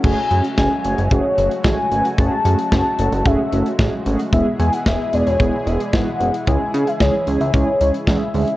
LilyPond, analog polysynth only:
\new Staff \with { instrumentName = "Analog polysynth" } { \time 4/4 \key fis \minor \tempo 4 = 112 <a cis' fis' gis'>8 <a cis' fis' gis'>8 <a cis' fis' gis'>8 <a cis' fis' gis'>8 <a cis' fis' gis'>8 <a cis' fis' gis'>8 <a cis' fis' gis'>8 <a cis' fis' b'>8 | <a cis' fis' gis'>8 <a cis' fis' gis'>8 <a cis' fis' gis'>8 <a cis' fis' a'>8 <a cis' fis' gis'>8 <a cis' fis' a'>8 <a cis' fis' gis'>8 <a cis' fis' gis'>8 | <gis b e' gis'>8 <gis b e' gis'>8 <gis b e' gis'>8 <gis b e' gis'>8 <gis b e' gis'>8 <gis b e' gis'>8 <gis b e' fis'>8 <gis b e' gis'>8 | <gis cis' e' gis'>8 <gis cis' e' gis'>8 <gis cis' e' gis'>8 <gis cis' e' gis'>8 <gis cis' e' gis'>8 <gis cis' e' gis'>8 <gis cis' e' gis'>8 <gis cis' e' gis'>8 | }